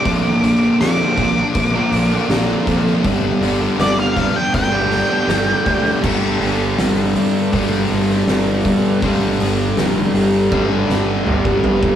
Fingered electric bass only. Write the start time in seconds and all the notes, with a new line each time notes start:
0.05 A#1
0.43 A#1
0.81 F2
1.17 A#1
1.55 A#1
1.92 A#1
2.29 A#1
2.67 F2
3.04 G1
3.41 G1
3.79 G1
4.54 G1
5.28 G1
5.66 D2
6.04 G1
6.41 G1
6.78 G1
7.16 G2
7.53 G1
7.90 G1
8.27 G1
8.65 G2
9.02 G1
9.41 G1
9.77 F1
10.14 G1
10.52 G1
10.89 G1
11.27 G1
11.65 G1